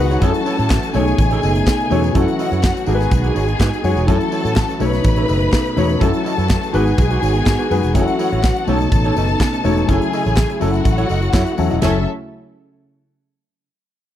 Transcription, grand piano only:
0.00 0.23 G#3 medium
0.00 0.23 D#4 medium
0.00 0.24 F#4 medium
0.00 0.23 B4 loud
0.22 0.92 F#3 medium
0.22 0.93 C#4 medium
0.22 0.93 E4 medium
0.22 0.29 G#4 medium
0.29 0.96 A4 medium
0.94 1.72 B2 medium
0.94 1.72 A3 medium
0.94 1.72 D#4 medium
0.94 1.73 C#5 loud
1.90 2.08 B2 loud
1.90 2.09 A3 medium
1.90 2.09 D#4 medium
1.90 2.09 C#5 loud
2.15 2.85 F#3 medium
2.15 2.86 C#4 medium
2.15 2.86 E4 medium
2.15 2.86 A4 loud
2.87 3.65 G#3 medium
2.87 3.65 D#4 medium
2.87 3.65 F#4 medium
2.87 2.94 A4 medium
2.95 3.68 B4 loud
3.83 4.02 G#3 medium
3.83 4.02 D#4 medium
3.83 4.02 F#4 medium
3.83 4.02 C#5 medium
4.07 4.78 F#3 medium
4.07 4.78 C#4 medium
4.07 4.79 E4 medium
4.07 4.79 A4 medium
4.80 5.58 B2 medium
4.80 5.58 A3 medium
4.80 5.58 D#4 medium
4.80 5.58 C#5 loud
5.76 5.95 B2 medium
5.76 5.95 A3 medium
5.76 5.95 D#4 medium
5.76 5.96 C#5 loud
6.01 6.72 F#3 medium
6.01 6.72 C#4 medium
6.01 6.72 E4 medium
6.01 6.72 A4 medium
6.74 7.51 G#3 loud
6.74 7.51 D#4 medium
6.74 7.51 F#4 medium
6.74 7.52 B4 loud
7.70 7.88 G#3 medium
7.70 7.88 D#4 medium
7.70 7.89 F#4 medium
7.70 7.89 B4 loud
7.94 8.65 F#3 medium
7.94 8.65 C#4 medium
7.94 8.65 E4 medium
7.94 8.01 G#4 medium
8.01 8.69 A4 medium
8.67 9.45 B2 medium
8.67 9.45 A3 medium
8.67 9.45 D#4 medium
8.67 9.46 C#5 medium
9.64 9.82 B2 medium
9.64 9.82 A3 medium
9.64 9.82 D#4 medium
9.64 9.82 C#5 loud
9.87 10.58 F#3 medium
9.87 10.59 C#4 medium
9.87 10.59 E4 medium
9.87 9.94 G#4 medium
9.94 10.60 A4 medium
10.60 11.38 F#3 medium
10.60 11.38 C#4 medium
10.60 11.38 E4 medium
10.60 11.39 A4 medium
11.34 11.56 E5 medium
11.58 11.76 F#3 medium
11.58 11.76 C#4 medium
11.58 11.76 E4 medium
11.58 11.76 A4 loud
11.58 11.80 C#5 medium
11.82 12.04 F#3 medium
11.82 12.04 C#4 medium
11.82 12.04 E4 medium
11.82 12.04 A4 medium

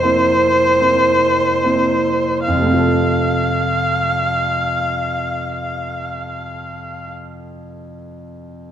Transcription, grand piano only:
0.00 2.48 F2 medium
0.00 0.03 A#3 soft
0.00 0.76 A#3 medium
0.00 0.03 C4 medium
0.00 0.76 C4 soft
0.00 0.04 E4 medium
0.00 0.76 E4 medium
0.80 1.59 A#3 soft
0.80 1.60 C4 soft
0.80 1.60 E4 soft
1.63 2.43 A#3 soft
1.63 2.43 C4 soft
1.63 2.43 E4 medium
2.48 7.16 F2 medium
2.54 7.22 C3 medium
2.61 7.29 A3 medium
2.67 7.35 C4 medium
2.73 7.41 F4 medium
2.79 7.47 A4 medium

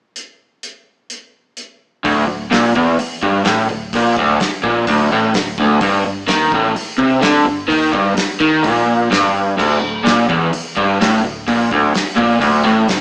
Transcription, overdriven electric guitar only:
2.04 2.26 D2 loud
2.27 2.47 D2 medium
2.50 2.74 A#2 loud
2.75 2.98 E2 loud
3.00 muted overdriven electric guitar stroke medium
3.22 3.44 G2 loud
3.44 3.68 A2 loud
3.70 3.89 D2 medium
3.95 4.17 A#2 loud
4.18 4.40 D2 loud
4.41 muted overdriven electric guitar stroke medium
4.63 4.86 A#2 loud
4.87 5.10 D2 loud
5.12 5.34 A2 loud
5.36 5.54 D2 medium
5.60 5.81 D2 loud
5.82 6.04 G2 loud
6.06 6.24 G2 medium
6.28 6.51 D#3 loud
6.54 6.75 A2 loud
6.76 muted overdriven electric guitar stroke medium
6.98 7.22 C3 loud
7.21 7.45 D3 loud
7.44 7.64 G2 medium
7.68 7.92 D#3 loud
7.92 8.14 G2 loud
8.16 muted overdriven electric guitar stroke medium
8.40 8.63 D#3 loud
8.63 9.10 A#2 loud
9.10 9.57 G2 loud
9.58 9.80 D2 loud
9.81 10.00 D2 medium
10.04 10.28 A#2 loud
10.29 10.52 E2 loud
10.53 muted overdriven electric guitar stroke medium
10.77 11.00 G2 loud
11.00 11.23 A2 loud
11.24 11.43 D2 medium
11.48 11.70 A#2 loud
11.72 11.94 D2 medium
11.95 muted overdriven electric guitar stroke medium
12.16 12.40 A#2 loud
12.41 12.64 D2 loud
12.66 12.88 A2 loud
12.90 13.01 D2 medium

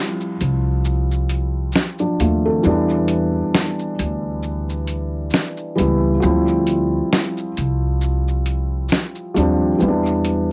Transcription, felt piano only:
0.00 0.32 F3 medium
0.00 0.32 G3 medium
0.00 0.33 C4 medium
0.00 0.34 E4 medium
2.00 2.19 F3 medium
2.00 2.18 D4 medium
2.20 2.44 A3 medium
2.20 2.44 F4 medium
2.45 2.88 C4 soft
2.45 2.88 A4 medium
2.63 3.90 E3 medium
2.63 3.91 G3 medium
2.63 3.91 B3 medium
2.63 3.92 D4 medium
5.76 6.10 E3 medium
5.76 6.10 G3 medium
5.76 6.11 B3 medium
5.76 6.11 E4 medium
6.20 7.48 F3 medium
6.20 7.48 G3 medium
6.20 7.49 C4 medium
6.20 7.50 E4 medium
9.34 9.68 F3 medium
9.34 9.69 G3 medium
9.34 9.69 C4 medium
9.34 9.70 D4 medium
9.78 10.52 E3 medium
9.78 10.52 G3 medium
9.78 10.52 B3 medium
9.78 9.88 C4 medium
9.88 10.52 D4 medium

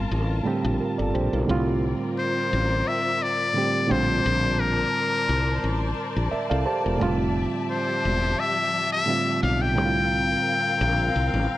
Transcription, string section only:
0.00 1.45 F4 medium
0.00 1.45 A#4 medium
0.00 1.44 A5 medium
1.48 3.87 C4 medium
1.48 3.87 F4 medium
1.48 3.87 A#4 medium
1.48 9.72 D5 medium
3.90 6.97 A#4 medium
3.90 6.97 C5 medium
3.90 9.72 A5 medium
7.00 9.73 F3 medium
7.00 9.73 G4 medium
7.00 9.73 E5 medium
9.75 11.58 C4 medium
9.75 11.58 A#4 medium
9.75 11.58 F5 medium

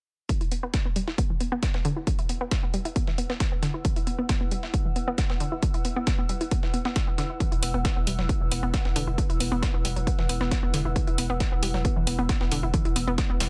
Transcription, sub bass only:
7.52 7.62 E1 medium
7.63 7.74 E1 loud
7.74 7.85 E1 medium
7.96 8.07 E1 medium
8.07 8.18 E1 loud
8.19 8.29 E1 medium
8.41 8.51 E1 medium
8.52 8.63 E1 medium
8.63 8.74 E1 medium
8.85 8.95 E1 medium
8.96 9.07 E1 loud
9.08 9.18 E1 medium
9.30 9.40 E1 medium
9.41 9.52 E1 loud
9.52 9.62 E1 medium
9.74 9.84 E1 medium
9.85 9.96 E1 loud
9.97 10.07 E1 medium
10.19 10.29 E1 medium
10.29 10.40 E1 loud
10.41 10.51 E1 medium
10.63 10.73 E1 medium
10.74 10.85 E1 loud
10.85 10.96 E1 medium
11.08 11.18 E1 medium
11.18 11.29 E1 loud
11.30 11.40 E1 medium
11.52 11.62 E1 medium
11.63 11.74 E1 loud
11.74 11.85 E1 medium
11.96 12.07 E1 medium
12.07 12.18 E1 loud
12.19 12.29 E1 medium
12.41 12.51 E1 medium
12.52 12.63 E1 loud
12.63 12.74 E1 medium
12.85 12.95 E1 medium
12.96 13.07 E1 loud
13.08 13.18 E1 medium
13.30 13.40 E1 medium
13.40 13.49 E1 loud

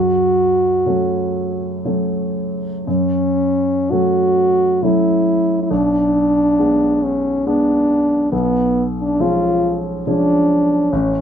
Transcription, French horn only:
0.00 1.86 F#4 medium
2.87 3.92 C#4 medium
3.91 4.85 F#4 medium
4.83 5.62 E4 medium
5.63 5.73 E4 soft
5.71 7.05 D4 medium
7.03 7.48 C#4 medium
7.46 8.31 D4 medium
8.32 8.85 B3 medium
9.02 9.23 D4 medium
9.21 9.80 F4 medium
10.08 10.94 D4 medium
10.92 11.21 C#4 medium

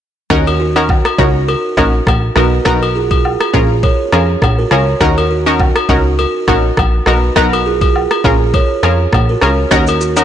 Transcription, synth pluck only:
0.30 0.72 C#4 loud
0.30 0.72 D#4 medium
0.30 0.72 F#4 medium
0.30 0.72 A#4 loud
0.76 0.97 C#4 medium
0.76 0.97 D#4 medium
0.76 0.97 F#4 medium
0.76 0.97 A#4 medium
1.18 1.41 C#4 medium
1.18 1.41 D#4 medium
1.18 1.41 F#4 medium
1.18 1.42 A#4 medium
1.77 2.00 C#4 medium
1.77 2.00 D#4 medium
1.77 2.00 F#4 medium
1.77 2.00 A#4 medium
2.36 2.63 B3 medium
2.36 2.63 D#4 medium
2.36 2.64 F#4 medium
2.36 2.64 A#4 medium
2.65 3.20 B3 medium
2.65 3.20 D#4 medium
2.65 3.20 F#4 medium
2.65 3.20 A#4 loud
3.53 3.76 C#4 medium
3.53 3.76 F4 medium
3.53 3.77 G#4 medium
3.53 3.77 A#4 medium
4.13 4.35 C#4 medium
4.13 4.35 F4 medium
4.13 4.36 G#4 medium
4.13 4.36 A#4 medium
4.71 4.94 C#4 medium
4.71 4.94 F4 medium
4.71 4.94 G#4 medium
4.71 4.94 A#4 medium
5.01 5.42 C#4 medium
5.01 5.42 D#4 medium
5.01 5.43 F#4 medium
5.01 5.43 A#4 loud
5.46 5.68 C#4 medium
5.46 5.68 D#4 medium
5.46 5.68 F#4 medium
5.46 5.68 A#4 medium
5.89 6.12 C#4 medium
5.89 6.12 D#4 medium
5.89 6.12 F#4 medium
5.89 6.12 A#4 medium
6.48 6.71 C#4 medium
6.48 6.71 D#4 medium
6.48 6.71 F#4 medium
6.48 6.71 A#4 medium
7.07 7.34 B3 medium
7.07 7.34 D#4 medium
7.07 7.34 F#4 medium
7.07 7.34 A#4 medium
7.36 7.91 B3 loud
7.36 7.91 D#4 medium
7.36 7.91 F#4 medium
7.36 7.91 A#4 loud
8.24 8.47 C#4 medium
8.24 8.47 F4 medium
8.24 8.47 G#4 medium
8.24 8.47 A#4 medium
8.83 9.06 C#4 medium
8.83 9.06 F4 medium
8.83 9.06 G#4 medium
8.83 9.06 A#4 medium
9.42 9.65 C#4 medium
9.42 9.65 F4 medium
9.42 9.65 G#4 medium
9.42 9.65 A#4 medium
9.71 10.13 C#4 medium
9.71 10.13 D#4 medium
9.71 10.13 F#4 medium
9.71 10.13 A#4 loud
10.17 10.24 C#4 medium
10.17 10.24 D#4 medium
10.17 10.24 F#4 medium
10.17 10.24 A#4 medium

